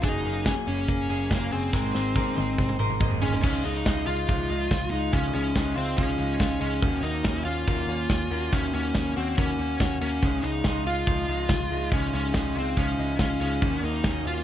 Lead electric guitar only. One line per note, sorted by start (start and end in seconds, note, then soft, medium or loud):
0.03 0.46 D#4 medium
0.46 0.52 C#4 loud
0.68 1.33 C#4 loud
1.31 1.52 A#3 medium
1.52 2.76 C4 medium
3.21 3.41 C#4 medium
3.42 3.62 C#4 medium
3.65 4.04 D#4 medium
4.06 4.90 F4 loud
4.91 5.13 D#4 loud
5.13 5.33 C#4 medium
5.34 5.77 C#4 loud
5.77 5.98 C4 loud
5.98 6.60 C#4 medium
6.61 7.05 C#4 loud
7.03 7.43 D#4 loud
7.45 8.55 F4 loud
8.53 8.73 C#4 loud
8.74 9.14 C#4 medium
9.17 9.36 C4 medium
9.37 9.97 C#4 medium
10.01 10.45 C#4 medium
10.43 10.83 D#4 medium
10.87 11.88 F4 loud
11.93 12.12 C#4 medium
12.15 12.58 C#4 loud
12.59 12.77 C4 medium
12.78 13.19 C#4 medium
13.20 13.40 C#4 medium
13.41 13.84 C#4 medium
13.84 14.23 D#4 loud
14.27 14.44 F4 loud